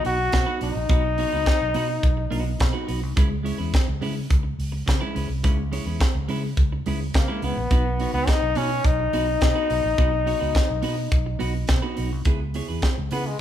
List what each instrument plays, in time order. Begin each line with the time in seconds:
0.04 fingered electric bass B1, clean electric guitar B3 D#4 F#4 B4, trombone F#4, open hi-hat
0.18 muted clean electric guitar stroke
0.32 fingered electric bass B2, muted clean electric guitar stroke, kick, snare, closed hi-hat
0.46 clean electric guitar B3 D#4 F#4 B4
0.61 fingered electric bass B1, clean electric guitar B3 D#4 F#4 B4, trombone D#4, open hi-hat
0.75 fingered electric bass A#1, muted clean electric guitar stroke
0.89 fingered electric bass B1, clean electric guitar B3 D#4 F#4 B4, kick, closed hi-hat
1.04 muted clean electric guitar stroke
1.18 clean electric guitar B3 D#4 F#4 C#5, open hi-hat
1.32 fingered electric bass C#2, clean electric guitar B3 D#4 F#4 B4
1.46 kick, snare, closed hi-hat
1.61 fingered electric bass B1, muted clean electric guitar stroke
1.74 fingered electric bass B2, clean electric guitar B3 D#4 F#4 B4, open hi-hat
1.89 muted clean electric guitar stroke
2.03 fingered electric bass B1, kick, closed hi-hat
2.17 muted clean electric guitar stroke
2.31 fingered electric bass B1, clean electric guitar B3 D#4 F#4 B4, open hi-hat
2.45 muted clean electric guitar stroke
2.59 fingered electric bass B2, muted clean electric guitar stroke, kick, snare, closed hi-hat
2.73 clean electric guitar B3 D#4 F#4 B4
2.87 fingered electric bass B1, clean electric guitar B3 D#4 F#4 B4, open hi-hat
3.01 fingered electric bass C2, muted clean electric guitar stroke
3.16 fingered electric bass C#2, clean electric guitar G#3 C#4 E4 B4, kick, closed hi-hat
3.30 muted clean electric guitar stroke
3.43 clean electric guitar G#3 C#4 E4 C#5, open hi-hat
3.58 fingered electric bass E2, clean electric guitar G#3 C#4 E4 B4
3.74 kick, snare, closed hi-hat
3.87 fingered electric bass C#2, muted clean electric guitar stroke
4.01 fingered electric bass C#3, clean electric guitar G#3 C#4 E4 B4, open hi-hat
4.16 muted clean electric guitar stroke
4.30 fingered electric bass C#2, muted clean electric guitar stroke, kick, closed hi-hat
4.43 muted clean electric guitar stroke
4.59 fingered electric bass C#2, open hi-hat
4.72 muted clean electric guitar stroke
4.86 fingered electric bass C#3, muted clean electric guitar stroke, kick, snare, closed hi-hat
5.01 clean electric guitar G#3 C#4 E4 B4
5.15 fingered electric bass C#2, clean electric guitar G#3 C#4 E4 B4, open hi-hat
5.29 fingered electric bass C2, muted clean electric guitar stroke
5.44 fingered electric bass C#2, clean electric guitar G#3 C#4 E4 B4, kick, closed hi-hat
5.57 muted clean electric guitar stroke
5.72 clean electric guitar G#3 C#4 E4 C#5, open hi-hat
5.86 fingered electric bass E2, clean electric guitar G#3 C#4 E4 B4
6.00 kick, snare, closed hi-hat
6.15 fingered electric bass C#2, muted clean electric guitar stroke
6.28 fingered electric bass C#3, clean electric guitar G#3 C#4 E4 B4, open hi-hat
6.44 muted clean electric guitar stroke
6.57 fingered electric bass C#2, kick, closed hi-hat
6.72 muted clean electric guitar stroke
6.86 fingered electric bass C#2, clean electric guitar G#3 C#4 E4 B4, open hi-hat
7.01 muted clean electric guitar stroke
7.14 fingered electric bass C#3, trombone A#3, muted clean electric guitar stroke, kick, snare, closed hi-hat
7.28 clean electric guitar G#3 C#4 E4 B4
7.42 fingered electric bass C#2, clean electric guitar G#3 C#4 E4 B4, trombone B3, open hi-hat
7.57 fingered electric bass A#1, muted clean electric guitar stroke
7.71 fingered electric bass B1, clean electric guitar B3 D#4 F#4 B4, kick, closed hi-hat
7.85 muted clean electric guitar stroke
8.00 clean electric guitar B3 D#4 F#4 C#5, open hi-hat
8.13 fingered electric bass C#2, trombone B3, clean electric guitar B3 D#4 F#4 B4
8.28 trombone D#4, kick, snare, closed hi-hat
8.42 fingered electric bass B1, muted clean electric guitar stroke
8.55 fingered electric bass B2, clean electric guitar B3 D#4 F#4 B4, trombone C#4, open hi-hat
8.71 muted clean electric guitar stroke
8.84 fingered electric bass B1, trombone D#4, kick, closed hi-hat
8.99 muted clean electric guitar stroke
9.13 fingered electric bass B1, clean electric guitar B3 D#4 F#4 B4, open hi-hat
9.28 muted clean electric guitar stroke
9.41 fingered electric bass B2, muted clean electric guitar stroke, kick, snare, closed hi-hat
9.55 clean electric guitar B3 D#4 F#4 B4
9.69 fingered electric bass B1, clean electric guitar B3 D#4 F#4 B4, open hi-hat
9.84 fingered electric bass A#1, muted clean electric guitar stroke
9.98 fingered electric bass B1, clean electric guitar B3 D#4 F#4 B4, kick, closed hi-hat
10.12 muted clean electric guitar stroke
10.26 clean electric guitar B3 D#4 F#4 C#5, open hi-hat
10.40 fingered electric bass C#2, clean electric guitar B3 D#4 F#4 B4
10.55 kick, snare, closed hi-hat
10.69 fingered electric bass B1, muted clean electric guitar stroke
10.82 fingered electric bass B2, clean electric guitar B3 D#4 F#4 B4, open hi-hat
10.97 muted clean electric guitar stroke
11.12 fingered electric bass B1, kick, closed hi-hat
11.26 muted clean electric guitar stroke
11.39 fingered electric bass B1, clean electric guitar B3 D#4 F#4 B4, open hi-hat
11.55 muted clean electric guitar stroke
11.67 fingered electric bass B2, muted clean electric guitar stroke, kick, snare, closed hi-hat
11.82 clean electric guitar B3 D#4 F#4 B4
11.96 fingered electric bass B1, clean electric guitar B3 D#4 F#4 B4, open hi-hat
12.11 fingered electric bass C2, muted clean electric guitar stroke
12.25 fingered electric bass C#2, clean electric guitar B3 E4 G#4 B4, kick, closed hi-hat
12.41 muted clean electric guitar stroke
12.54 clean electric guitar B3 E4 G#4 C#5, open hi-hat
12.68 fingered electric bass E2, clean electric guitar B3 E4 G#4 B4
12.82 kick, snare, closed hi-hat
12.97 fingered electric bass C#2, muted clean electric guitar stroke
13.11 fingered electric bass C#3, clean electric guitar B3 E4 G#4 B4, trombone B3, open hi-hat
13.25 trombone G#3, muted clean electric guitar stroke